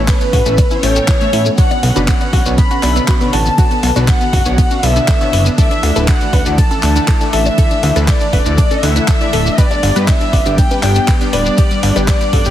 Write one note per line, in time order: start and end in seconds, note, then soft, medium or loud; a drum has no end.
0.00 0.12 A1 loud
0.00 0.11 A2 loud
0.00 1.54 E3 medium
0.00 5.54 B3 medium
0.00 0.11 C#4 medium
0.00 1.54 C#4 medium
0.00 0.11 A4 medium
0.00 0.11 C#5 loud
0.08 0.15 A3 medium
0.08 0.83 B4 loud
0.08 0.85 B4 loud
0.08 kick loud
0.08 clap loud
0.08 closed hi-hat loud
0.08 ride medium
0.08 shekere medium
0.21 0.27 A3 medium
0.21 closed hi-hat soft
0.21 shekere soft
0.33 0.41 A2 medium
0.33 0.40 F#4 loud
0.33 kick medium
0.33 open hi-hat loud
0.33 cowbell medium
0.33 high conga medium
0.46 0.62 A1 loud
0.46 0.55 A2 medium
0.46 0.52 A3 medium
0.46 0.55 C#4 medium
0.46 0.55 A4 medium
0.46 0.55 E5 medium
0.46 closed hi-hat soft
0.46 shekere medium
0.58 0.65 A3 medium
0.58 kick loud
0.58 closed hi-hat medium
0.58 ride medium
0.58 high bongo medium
0.58 shekere medium
0.71 0.77 E4 medium
0.71 closed hi-hat soft
0.71 high conga loud
0.71 shekere soft
0.83 0.99 A1 loud
0.83 0.93 A2 medium
0.83 0.90 A3 medium
0.83 0.93 C#4 medium
0.83 0.93 A4 medium
0.83 1.48 C#5 loud
0.83 0.93 G5 medium
0.83 open hi-hat loud
0.96 1.18 A2 medium
0.96 1.02 A3 medium
0.96 1.18 C#4 medium
0.96 1.18 A4 medium
0.96 1.18 G5 medium
0.96 closed hi-hat soft
0.96 shekere medium
1.08 1.15 E4 medium
1.08 kick loud
1.08 clap loud
1.08 closed hi-hat medium
1.08 ride medium
1.08 high bongo soft
1.08 shekere medium
1.21 1.36 A2 medium
1.21 1.27 A3 medium
1.21 1.36 C#4 medium
1.21 1.36 A4 medium
1.21 1.36 E5 medium
1.21 closed hi-hat soft
1.21 shekere soft
1.33 1.49 A2 medium
1.33 1.40 E4 medium
1.33 open hi-hat loud
1.45 1.52 A3 medium
1.45 shekere medium
1.58 1.68 B2 medium
1.58 5.54 D3 medium
1.58 1.68 B3 medium
1.58 3.56 C#4 medium
1.58 1.68 D4 medium
1.58 1.65 F#4 loud
1.58 1.68 C#5 loud
1.58 2.03 F#5 loud
1.58 kick loud
1.58 closed hi-hat medium
1.58 ride medium
1.58 shekere medium
1.71 1.77 B3 medium
1.71 closed hi-hat soft
1.71 high bongo medium
1.71 shekere soft
1.83 1.91 B1 loud
1.83 1.90 B3 medium
1.83 open hi-hat loud
1.83 cowbell loud
1.96 2.12 F#1 medium
1.96 2.11 B2 medium
1.96 2.11 B3 medium
1.96 2.11 D4 medium
1.96 2.02 F#4 loud
1.96 2.11 B4 loud
1.96 closed hi-hat soft
1.96 shekere medium
2.08 2.15 B3 medium
2.08 2.53 F#5 loud
2.08 2.53 F#5 medium
2.08 kick loud
2.08 clap loud
2.08 closed hi-hat medium
2.08 ride medium
2.08 shekere medium
2.20 2.27 B3 medium
2.20 closed hi-hat soft
2.20 high bongo soft
2.20 shekere soft
2.33 2.41 B1 medium
2.33 2.40 F#4 loud
2.33 kick medium
2.33 open hi-hat medium
2.33 cowbell medium
2.33 high conga medium
2.46 2.62 B1 loud
2.46 2.55 B2 medium
2.46 2.55 B3 medium
2.46 2.52 B3 medium
2.46 2.55 D4 medium
2.46 2.55 C#5 medium
2.46 closed hi-hat soft
2.46 shekere medium
2.58 2.65 B3 medium
2.58 3.23 B5 loud
2.58 kick loud
2.58 closed hi-hat medium
2.58 ride medium
2.58 shekere medium
2.71 2.77 F#4 medium
2.71 closed hi-hat soft
2.71 high conga loud
2.71 shekere soft
2.83 2.99 B1 medium
2.83 2.93 B2 medium
2.83 2.93 B3 medium
2.83 2.90 B3 medium
2.83 2.93 D4 medium
2.83 2.93 E5 medium
2.83 clap medium
2.83 open hi-hat loud
2.83 high bongo medium
2.96 3.18 B2 medium
2.96 3.18 B3 medium
2.96 3.02 B3 medium
2.96 3.18 D4 medium
2.96 3.18 E5 medium
2.96 closed hi-hat soft
2.96 shekere medium
3.08 3.15 F#4 medium
3.08 kick loud
3.08 clap loud
3.08 closed hi-hat medium
3.08 ride medium
3.08 shekere medium
3.21 3.36 B2 medium
3.21 3.36 B3 medium
3.21 3.27 B3 medium
3.21 3.36 D4 medium
3.21 3.36 C#5 loud
3.21 closed hi-hat soft
3.21 shekere soft
3.33 3.49 A1 medium
3.33 3.40 F#4 medium
3.33 3.98 A5 loud
3.33 open hi-hat loud
3.33 high bongo soft
3.46 3.52 B3 medium
3.46 shekere medium
3.58 3.68 B2 medium
3.58 3.68 B3 medium
3.58 3.68 D4 medium
3.58 9.54 D4 medium
3.58 3.65 F#4 loud
3.58 3.68 C#5 medium
3.58 kick loud
3.58 closed hi-hat medium
3.58 ride medium
3.58 shekere medium
3.71 3.77 B3 medium
3.71 closed hi-hat soft
3.71 shekere soft
3.83 3.91 B1 loud
3.83 3.90 B3 medium
3.83 open hi-hat loud
3.83 cowbell loud
3.96 4.12 B1 loud
3.96 4.11 B2 loud
3.96 4.11 B3 medium
3.96 4.11 D4 medium
3.96 4.02 F#4 medium
3.96 4.11 B4 loud
3.96 closed hi-hat soft
3.96 high bongo medium
3.96 shekere medium
4.08 4.15 B3 medium
4.08 4.85 F#5 loud
4.08 4.83 F#5 loud
4.08 kick loud
4.08 clap loud
4.08 closed hi-hat medium
4.08 ride medium
4.08 shekere medium
4.21 4.27 B3 medium
4.21 closed hi-hat soft
4.21 shekere soft
4.33 4.41 F#1 medium
4.33 4.40 F#4 loud
4.33 kick medium
4.33 open hi-hat medium
4.33 cowbell medium
4.33 high conga medium
4.45 4.62 B1 loud
4.45 4.55 B2 medium
4.45 4.55 B3 medium
4.45 4.52 B3 medium
4.45 4.55 D4 medium
4.45 4.55 C#5 medium
4.45 closed hi-hat soft
4.45 high bongo soft
4.45 shekere medium
4.58 4.65 B3 medium
4.58 kick loud
4.58 closed hi-hat medium
4.58 ride medium
4.58 shekere medium
4.71 4.77 F#4 loud
4.71 closed hi-hat soft
4.71 high conga medium
4.71 shekere soft
4.83 4.99 B1 loud
4.83 4.93 B2 medium
4.83 4.93 B3 medium
4.83 4.90 B3 medium
4.83 4.93 D4 medium
4.83 5.48 E5 loud
4.83 4.93 E5 medium
4.83 5.48 E5 loud
4.83 open hi-hat loud
4.96 5.18 B2 medium
4.96 5.18 B3 medium
4.96 5.02 B3 medium
4.96 5.18 D4 medium
4.96 5.18 E5 medium
4.96 closed hi-hat soft
4.96 shekere medium
5.08 5.15 A4 medium
5.08 kick loud
5.08 clap loud
5.08 closed hi-hat medium
5.08 ride medium
5.08 high bongo medium
5.08 shekere medium
5.21 5.36 B2 medium
5.21 5.36 B3 medium
5.21 5.27 B3 medium
5.21 5.36 D4 medium
5.21 5.36 C#5 loud
5.21 closed hi-hat soft
5.21 shekere soft
5.33 5.49 F#1 medium
5.33 5.40 B4 medium
5.33 open hi-hat loud
5.46 5.52 B3 medium
5.46 closed hi-hat soft
5.46 shekere medium
5.58 5.68 D3 medium
5.58 9.54 E3 medium
5.58 9.54 A3 medium
5.58 5.68 A3 medium
5.58 5.68 E4 medium
5.58 5.65 A4 loud
5.58 5.68 D5 loud
5.58 6.03 E5 loud
5.58 kick loud
5.58 closed hi-hat medium
5.58 ride medium
5.58 shekere medium
5.71 5.77 D4 medium
5.71 closed hi-hat soft
5.71 high bongo soft
5.71 shekere soft
5.83 5.91 D2 loud
5.83 5.90 D4 medium
5.83 open hi-hat loud
5.83 cowbell medium
5.96 6.12 D1 medium
5.96 6.11 D3 loud
5.96 6.11 A3 medium
5.96 6.11 E4 medium
5.96 6.02 A4 loud
5.96 6.11 B4 loud
5.96 closed hi-hat soft
5.96 shekere medium
6.08 6.15 D4 medium
6.08 6.53 F#5 medium
6.08 6.53 F#5 loud
6.08 kick loud
6.08 clap loud
6.08 closed hi-hat medium
6.08 ride medium
6.08 shekere medium
6.21 6.27 D4 medium
6.21 closed hi-hat soft
6.21 shekere soft
6.33 6.41 D2 medium
6.33 6.40 B4 loud
6.33 kick medium
6.33 open hi-hat medium
6.33 cowbell medium
6.33 high bongo medium
6.33 high conga medium
6.46 6.62 D2 loud
6.46 6.55 D3 medium
6.46 6.55 A3 medium
6.46 6.52 D4 medium
6.46 6.55 E4 medium
6.46 6.55 D5 medium
6.46 closed hi-hat soft
6.46 shekere medium
6.58 6.65 D4 medium
6.58 7.23 A5 loud
6.58 kick loud
6.58 closed hi-hat medium
6.58 ride medium
6.58 shekere medium
6.71 6.77 A4 loud
6.71 closed hi-hat soft
6.71 high conga medium
6.71 shekere soft
6.83 6.99 D2 medium
6.83 6.93 D3 medium
6.83 6.93 A3 medium
6.83 6.90 D4 medium
6.83 6.93 E4 medium
6.83 6.93 F#5 medium
6.83 clap medium
6.83 open hi-hat loud
6.83 high bongo soft
6.96 7.18 D3 medium
6.96 7.18 A3 medium
6.96 7.02 D4 medium
6.96 7.18 E4 medium
6.96 7.18 F#5 loud
6.96 closed hi-hat soft
6.96 shekere medium
7.08 7.15 A4 medium
7.08 kick loud
7.08 clap loud
7.08 closed hi-hat medium
7.08 ride medium
7.08 shekere medium
7.21 7.36 D3 medium
7.21 7.36 A3 medium
7.21 7.27 D4 medium
7.21 7.36 E4 medium
7.21 7.36 D5 loud
7.21 closed hi-hat soft
7.21 shekere soft
7.33 7.49 A1 medium
7.33 7.40 A4 loud
7.33 7.98 E5 loud
7.33 open hi-hat loud
7.46 7.52 D4 medium
7.46 high bongo medium
7.46 shekere medium
7.58 7.68 D3 medium
7.58 7.68 A3 medium
7.58 7.68 E4 medium
7.58 7.65 A4 loud
7.58 7.68 D5 medium
7.58 kick loud
7.58 closed hi-hat medium
7.58 ride medium
7.58 shekere medium
7.71 7.77 D4 medium
7.71 closed hi-hat soft
7.71 shekere soft
7.83 7.91 D2 loud
7.83 7.90 D4 medium
7.83 open hi-hat loud
7.83 cowbell loud
7.96 8.12 D2 loud
7.96 8.11 D3 loud
7.96 8.11 A3 medium
7.96 8.11 E4 medium
7.96 8.02 A4 loud
7.96 8.11 B4 loud
7.96 closed hi-hat soft
7.96 high bongo soft
7.96 shekere medium
8.08 8.15 D4 medium
8.08 8.83 D5 loud
8.08 8.85 D5 loud
8.08 kick loud
8.08 clap loud
8.08 closed hi-hat medium
8.08 ride medium
8.08 shekere medium
8.20 8.27 D4 medium
8.20 closed hi-hat soft
8.20 shekere soft
8.33 8.41 D1 medium
8.33 8.40 B4 loud
8.33 kick medium
8.33 open hi-hat medium
8.33 cowbell medium
8.33 high conga medium
8.46 8.62 D2 loud
8.46 8.55 D3 medium
8.46 8.55 A3 medium
8.46 8.52 D4 medium
8.46 8.55 E4 medium
8.46 8.55 D5 medium
8.46 closed hi-hat soft
8.46 shekere medium
8.58 8.65 D4 medium
8.58 kick loud
8.58 closed hi-hat medium
8.58 ride medium
8.58 high bongo medium
8.58 shekere medium
8.71 8.77 A4 loud
8.71 closed hi-hat soft
8.71 high conga loud
8.71 shekere soft
8.83 8.99 D2 loud
8.83 8.93 D3 medium
8.83 8.93 A3 medium
8.83 8.90 D4 medium
8.83 8.93 E4 medium
8.83 9.58 E5 loud
8.83 9.60 E5 loud
8.83 8.93 F#5 medium
8.83 open hi-hat loud
8.96 9.18 D3 medium
8.96 9.18 A3 medium
8.96 9.02 D4 medium
8.96 9.18 E4 medium
8.96 9.18 F#5 medium
8.96 closed hi-hat soft
8.96 shekere medium
9.08 9.15 A4 medium
9.08 kick loud
9.08 clap loud
9.08 closed hi-hat medium
9.08 ride medium
9.08 high bongo soft
9.08 shekere medium
9.21 9.36 D3 medium
9.21 9.36 A3 medium
9.21 9.27 D4 medium
9.21 9.36 E4 medium
9.21 9.36 D5 loud
9.21 closed hi-hat soft
9.21 shekere soft
9.33 9.49 D1 medium
9.33 9.40 A4 medium
9.33 open hi-hat loud
9.46 9.52 D4 medium
9.46 shekere medium
9.58 9.68 G2 medium
9.58 12.51 G3 medium
9.58 9.68 B3 medium
9.58 12.51 B3 medium
9.58 12.51 D4 medium
9.58 9.68 G4 medium
9.58 9.65 B4 loud
9.58 10.08 D5 loud
9.58 10.10 D5 loud
9.58 9.68 D5 medium
9.58 kick loud
9.58 closed hi-hat loud
9.58 ride medium
9.58 shekere medium
9.71 9.77 D4 medium
9.71 closed hi-hat soft
9.71 high bongo medium
9.71 shekere soft
9.83 9.91 G1 loud
9.83 9.90 D4 medium
9.83 open hi-hat loud
9.83 cowbell medium
9.96 10.12 G2 medium
9.96 10.11 G2 loud
9.96 10.11 B3 medium
9.96 10.11 G4 medium
9.96 10.11 B4 loud
9.96 10.02 B4 loud
9.96 closed hi-hat soft
9.96 shekere medium
10.08 10.15 D4 medium
10.08 10.53 E5 medium
10.08 10.53 E5 loud
10.08 kick loud
10.08 clap loud
10.08 closed hi-hat loud
10.08 ride medium
10.08 shekere medium
10.21 10.27 D4 medium
10.21 closed hi-hat soft
10.21 high bongo soft
10.21 shekere soft
10.33 10.41 G1 medium
10.33 10.40 D5 loud
10.33 kick medium
10.33 open hi-hat medium
10.33 cowbell medium
10.33 high conga medium
10.46 10.62 G1 medium
10.46 10.55 G2 medium
10.46 10.55 B3 medium
10.46 10.52 D4 medium
10.46 10.55 G4 medium
10.46 10.55 D5 medium
10.46 closed hi-hat soft
10.46 shekere medium
10.58 10.65 D4 medium
10.58 11.23 G5 loud
10.58 kick loud
10.58 closed hi-hat medium
10.58 ride medium
10.58 shekere medium
10.71 10.77 B4 loud
10.71 closed hi-hat soft
10.71 high conga loud
10.71 shekere soft
10.83 10.99 G1 medium
10.83 10.93 G2 medium
10.83 10.93 B3 medium
10.83 10.90 D4 medium
10.83 10.93 G4 medium
10.83 10.93 G5 medium
10.83 clap medium
10.83 open hi-hat loud
10.83 high bongo medium
10.95 11.18 G2 medium
10.95 11.18 B3 medium
10.95 11.02 D4 medium
10.95 11.18 G4 medium
10.95 11.18 G5 medium
10.95 closed hi-hat soft
10.95 shekere medium
11.08 11.15 B4 medium
11.08 kick loud
11.08 clap loud
11.08 closed hi-hat medium
11.08 ride medium
11.08 shekere medium
11.21 11.36 G2 medium
11.21 11.36 B3 medium
11.21 11.27 D4 medium
11.21 11.36 G4 medium
11.21 11.36 D5 loud
11.21 closed hi-hat soft
11.21 shekere soft
11.33 11.49 D1 medium
11.33 11.40 B4 loud
11.33 11.98 D5 loud
11.33 open hi-hat medium
11.33 high bongo soft
11.46 11.52 D4 medium
11.46 shekere medium
11.57 11.68 G2 medium
11.57 11.68 B3 medium
11.57 11.68 G4 medium
11.57 11.65 G4 loud
11.57 11.68 D5 medium
11.57 kick loud
11.57 closed hi-hat loud
11.57 ride medium
11.57 shekere medium
11.71 11.77 G3 medium
11.71 closed hi-hat soft
11.71 shekere soft
11.83 11.91 G1 loud
11.83 11.90 G3 medium
11.83 open hi-hat loud
11.83 cowbell medium
11.96 12.12 G1 loud
11.96 12.11 G2 loud
11.96 12.11 B3 medium
11.96 12.11 G4 medium
11.96 12.02 G4 medium
11.96 12.11 B4 loud
11.96 closed hi-hat soft
11.96 high bongo medium
11.96 shekere medium
12.08 12.15 G3 medium
12.08 12.51 D5 loud
12.08 kick loud
12.08 clap loud
12.08 closed hi-hat loud
12.08 ride medium
12.08 shekere medium
12.21 12.27 G3 medium
12.21 closed hi-hat soft
12.21 shekere soft
12.33 12.41 G2 medium
12.33 12.40 A4 loud
12.33 kick medium
12.33 open hi-hat medium
12.33 cowbell medium
12.33 high conga medium
12.45 12.51 G1 loud
12.45 12.51 G2 medium
12.45 12.51 G3 medium
12.45 12.51 B3 medium
12.45 12.51 G4 medium
12.45 12.51 D5 medium
12.45 closed hi-hat soft
12.45 high bongo soft
12.45 shekere medium